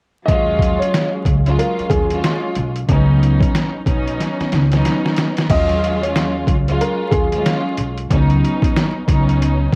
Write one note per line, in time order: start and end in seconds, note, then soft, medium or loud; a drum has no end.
0.25 0.77 D#2 loud
0.25 1.34 F#3 loud
0.25 1.34 G#3 medium
0.25 1.35 C#4 medium
0.25 1.35 F4 loud
0.25 0.76 D#5 loud
0.25 kick loud
0.25 closed hi-hat medium
0.59 kick medium
0.59 closed hi-hat medium
0.79 1.09 C#5 medium
0.79 closed hi-hat medium
0.94 snare loud
0.94 closed hi-hat medium
1.25 1.55 C#2 medium
1.25 kick medium
1.25 closed hi-hat medium
1.45 2.04 F#3 loud
1.45 2.05 G#3 medium
1.45 2.05 C#4 medium
1.45 2.05 F4 loud
1.45 closed hi-hat soft
1.59 1.88 A#4 medium
1.59 closed hi-hat medium
1.79 muted upright bass stroke soft
1.79 closed hi-hat soft
1.90 2.20 D#2 loud
1.90 2.19 G#4 medium
1.90 kick medium
1.90 closed hi-hat medium
2.10 2.70 F#3 medium
2.10 2.70 G#3 medium
2.10 2.71 C#4 medium
2.10 2.71 F4 loud
2.10 closed hi-hat medium
2.24 snare loud
2.24 closed hi-hat medium
2.56 2.86 B1 medium
2.56 closed hi-hat medium
2.76 closed hi-hat medium
2.88 3.38 C#2 loud
2.88 3.80 F#3 loud
2.88 3.81 B3 medium
2.88 3.81 C#4 medium
2.88 3.82 D#4 loud
2.88 kick loud
2.88 closed hi-hat medium
3.23 closed hi-hat medium
3.41 kick medium
3.41 closed hi-hat medium
3.55 snare loud
3.55 closed hi-hat medium
3.84 4.16 B1 medium
3.84 4.63 F#3 loud
3.84 4.63 B3 medium
3.84 4.64 C#4 loud
3.84 4.64 D#4 loud
3.84 kick medium
3.84 closed hi-hat medium
4.08 closed hi-hat soft
4.20 snare medium
4.20 closed hi-hat medium
4.40 muted upright bass stroke soft
4.40 snare medium
4.40 closed hi-hat soft
4.52 4.82 C#2 medium
4.52 snare medium
4.52 closed hi-hat medium
4.71 5.44 F#3 medium
4.71 5.44 B3 medium
4.71 5.45 C#4 medium
4.71 5.45 D#4 loud
4.71 snare medium
4.71 closed hi-hat medium
4.85 snare medium
4.85 closed hi-hat medium
5.06 snare medium
5.17 snare loud
5.17 closed hi-hat medium
5.37 snare medium
5.37 closed hi-hat medium
5.49 6.43 D#2 loud
5.49 6.56 F#3 loud
5.49 6.56 G#3 medium
5.49 6.57 C#4 medium
5.49 6.57 F4 loud
5.49 6.00 D#5 loud
5.49 kick loud
5.49 closed hi-hat medium
5.49 crash medium
5.69 closed hi-hat soft
5.84 closed hi-hat medium
6.02 6.31 C#5 medium
6.02 closed hi-hat medium
6.16 snare loud
6.16 closed hi-hat medium
6.47 6.77 C#2 medium
6.47 kick medium
6.47 closed hi-hat medium
6.67 7.26 F#3 loud
6.67 7.26 G#3 medium
6.67 7.27 C#4 medium
6.67 7.27 F4 loud
6.67 closed hi-hat soft
6.81 7.10 A#4 medium
6.81 closed hi-hat medium
7.11 7.42 D#2 medium
7.11 7.41 G#4 medium
7.11 kick medium
7.11 closed hi-hat medium
7.32 7.91 F#3 medium
7.32 7.92 G#3 medium
7.32 7.92 C#4 medium
7.32 7.93 F4 loud
7.32 closed hi-hat medium
7.46 snare loud
7.46 closed hi-hat medium
7.77 8.07 B1 medium
7.77 closed hi-hat medium
7.97 closed hi-hat medium
8.10 8.40 C#2 loud
8.10 9.02 F#3 loud
8.10 9.02 B3 medium
8.10 9.03 C#4 medium
8.10 9.03 D#4 loud
8.10 kick loud
8.10 closed hi-hat medium
8.30 closed hi-hat soft
8.45 closed hi-hat medium
8.62 kick medium
8.62 closed hi-hat medium
8.76 snare loud
8.76 closed hi-hat medium
9.06 9.69 C#2 medium
9.06 9.75 F#3 loud
9.06 9.75 B3 medium
9.06 9.75 C#4 loud
9.06 9.75 D#4 loud
9.06 kick medium
9.06 closed hi-hat medium
9.29 closed hi-hat soft
9.42 closed hi-hat medium